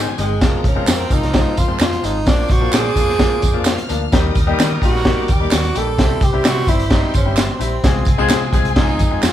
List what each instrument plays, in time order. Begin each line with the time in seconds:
Already playing: horn section D#3 C4 G#4 C5, string section G#4 G#5
0.18 fingered electric bass G1, grand piano D#3 G#3 C4 D#4, tenor saxophone G#3, closed hi-hat, tambourine
0.41 fingered electric bass F1, grand piano F3 G#3 C4 F4, horn section F3 A#3 C4 A#4, string section A#4 A#5, kick, snare, closed hi-hat, tambourine
0.64 fingered electric bass F1, tenor saxophone C#4, kick, closed hi-hat
0.75 grand piano F3 G#3 C4 F4
0.87 fingered electric bass F2, tenor saxophone C4, snare, clap, closed hi-hat, tambourine
1.10 fingered electric bass C2, grand piano F3 G#3 C4 F4, tenor saxophone D#4, kick, closed hi-hat, tambourine
1.23 snare, closed hi-hat
1.33 grand piano F3 G#3 C4 F4, string section C5 C6, kick, snare, closed hi-hat, tambourine
1.57 fingered electric bass F2, tenor saxophone F4, kick, closed hi-hat, tambourine
1.68 grand piano F3 G#3 C4 F4
1.79 fingered electric bass F2, tenor saxophone F4, snare, clap, closed hi-hat, tambourine
1.93 closed hi-hat
2.03 fingered electric bass G#1, grand piano F3 G#3 C4 F4, tenor saxophone D#4, closed hi-hat, tambourine
2.25 fingered electric bass A#1, grand piano F3 A#3 D4 F4, horn section F3 C4 D4 C5, tenor saxophone D4, string section D5 D6, kick, snare, closed hi-hat, tambourine
2.49 fingered electric bass A#1, tenor saxophone F#4, kick, closed hi-hat, tambourine
2.60 grand piano F3 A#3 D4 F4
2.73 fingered electric bass A#2, tenor saxophone G#4, snare, clap, closed hi-hat, tambourine
2.95 fingered electric bass F2, grand piano F3 A#3 D4 F4, kick, closed hi-hat, tambourine
3.09 snare
3.18 grand piano F3 A#3 D4 F4, kick, snare, closed hi-hat, tambourine
3.42 fingered electric bass F2, kick, closed hi-hat, tambourine
3.53 grand piano F3 A#3 D4 F4
3.65 string section F5 F6, snare, clap, closed hi-hat, tambourine
3.78 closed hi-hat
3.89 fingered electric bass D2, grand piano F3 A#3 D4 F4, closed hi-hat, tambourine
4.12 fingered electric bass D#2, grand piano G3 A#3 D#4 G4, horn section G3 A#3 D#4 A#4, string section D#5 D#6, kick, snare, closed hi-hat, tambourine
4.35 fingered electric bass D#2, kick, closed hi-hat, tambourine
4.47 grand piano G3 A#3 D#4 G4
4.59 fingered electric bass D#3, snare, clap, closed hi-hat, tambourine
4.82 fingered electric bass A#1, grand piano G3 A#3 D#4 G4, tenor saxophone F#4, kick, closed hi-hat, tambourine
4.95 snare
5.05 grand piano G3 A#3 D#4 G4, string section D5 D6, kick, snare, closed hi-hat
5.28 fingered electric bass D#2, tenor saxophone G4, kick, closed hi-hat, tambourine
5.40 grand piano G3 A#3 D#4 G4
5.51 fingered electric bass D#2, tenor saxophone F#4, snare, clap, closed hi-hat, tambourine
5.64 closed hi-hat
5.75 fingered electric bass A#1, grand piano G3 A#3 D#4 G4, tenor saxophone A4, closed hi-hat, tambourine
5.98 fingered electric bass C2, horn section E3 G3 C4 G4, grand piano G3 C4 E4 G4, string section C5 C6, kick, snare, closed hi-hat, tambourine
6.21 fingered electric bass C2, tenor saxophone G4, kick, closed hi-hat, tambourine
6.33 grand piano G3 C4 E4 G4
6.45 fingered electric bass C3, tenor saxophone F#4, snare, clap, closed hi-hat, tambourine
6.67 fingered electric bass G1, grand piano G3 C4 E4 G4, tenor saxophone E4, kick, closed hi-hat, tambourine
6.79 closed hi-hat
6.90 grand piano G3 C4 E4 G4, tenor saxophone D#4, kick, snare, closed hi-hat, tambourine
7.14 fingered electric bass G1, tenor saxophone C#4, kick, closed hi-hat, tambourine
7.25 grand piano G3 C4 E4 G4
7.37 tenor saxophone C4, snare, clap, closed hi-hat, tambourine
7.59 fingered electric bass A#1, grand piano G3 C4 E4 G4, closed hi-hat, tambourine
7.83 fingered electric bass C2, horn section F3 G#3 C4 G#4, grand piano G#3 C4 F4 G#4, string section G#4 G#5, kick, snare, closed hi-hat, tambourine
8.05 fingered electric bass C2, kick, closed hi-hat, tambourine
8.18 grand piano G#3 C4 F4 G#4
8.29 fingered electric bass C3, snare, clap, closed hi-hat, tambourine
8.53 fingered electric bass C2, grand piano G#3 C4 F4 G#4, kick, closed hi-hat, tambourine
8.65 closed hi-hat
8.76 grand piano G#3 C4 F4 G#4, tenor saxophone D#4, kick, snare, closed hi-hat
8.99 fingered electric bass F2, kick, closed hi-hat, tambourine
9.10 grand piano G#3 C4 F4 G#4
9.23 fingered electric bass F2, tenor saxophone F4, snare, clap, closed hi-hat, tambourine